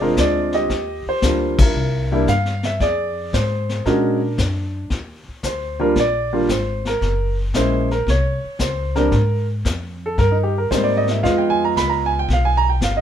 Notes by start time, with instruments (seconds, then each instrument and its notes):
Already playing: grand piano G#4
0.00 upright bass F1, grand piano G#3 C4 D4 F4 A#4
0.17 upright bass D2, grand piano D5, kick, snare, hi-hat pedal
0.52 grand piano G4 D#5, snare
0.70 upright bass D#2, brush sweep, kick, snare
1.06 grand piano C5, muted upright bass stroke
1.22 upright bass D2, grand piano G3 A#3 D4 F4, kick, snare, hi-hat pedal
1.59 grand piano E4 A#4, kick, ride
1.74 upright bass C2, brush sweep
2.12 grand piano G3 A#3 D4 E4
2.27 upright bass G2, grand piano F5, kick, snare, hi-hat pedal
2.45 snare
2.63 grand piano E5, snare
2.80 upright bass F2, grand piano G#4 D5, brush sweep, kick, snare
3.33 upright bass G#2, grand piano C5, kick, snare, hi-hat pedal
3.69 snare
3.86 upright bass A#2, grand piano G#3 C#4 D4 F#4 A#4, brush sweep, kick, snare
4.38 upright bass F#2, kick, snare, hi-hat pedal
4.90 upright bass D#2, brush sweep, kick, snare
5.28 muted upright bass stroke
5.43 upright bass D2, grand piano C5, kick, snare, hi-hat pedal
5.80 grand piano G3 A#3 D4 F4 A#4
5.96 upright bass A#1, grand piano D5, brush sweep, kick, snare
6.33 grand piano G3 A#3 D4 F4
6.49 upright bass G#1, grand piano C5, kick, snare, hi-hat pedal
6.85 grand piano A#4, snare
7.01 upright bass F#1, brush sweep, kick, snare
7.54 upright bass A#1, grand piano G#3 A#3 C#4 E4 C5, kick, snare, hi-hat pedal
7.91 grand piano A#4, snare
8.07 upright bass C2, grand piano C#5, brush sweep, kick, snare
8.44 muted upright bass stroke
8.59 upright bass C#2, grand piano C5, kick, snare, hi-hat pedal
8.95 grand piano G3 A#3 C4 D4 A#4, snare
9.12 upright bass G#2, brush sweep, kick, snare
9.65 upright bass F2, kick, snare, hi-hat pedal
10.06 grand piano A4
10.18 upright bass G2, grand piano A#4, brush sweep, kick, snare
10.32 grand piano D#4
10.43 grand piano G4
10.58 grand piano A#4
10.71 upright bass G#2, grand piano G3 A#3 C4 D#4 C5, kick, snare, hi-hat pedal
10.84 grand piano D5
10.97 grand piano D#5
11.07 grand piano E5, snare
11.23 upright bass F2, grand piano G#3 B3 D#4 F4 F5, brush sweep, kick, snare
11.38 grand piano G5
11.50 grand piano G#5
11.65 grand piano A#5
11.76 upright bass C#2, grand piano B5, kick, snare, hi-hat pedal
11.89 grand piano A#5
12.06 grand piano G#5
12.19 grand piano G5
12.29 upright bass B1, brush sweep, kick, snare
12.33 grand piano F5
12.45 grand piano G#5
12.57 grand piano A#5
12.70 grand piano G5
12.81 upright bass G1, grand piano F5, kick, snare, hi-hat pedal
12.97 grand piano D#5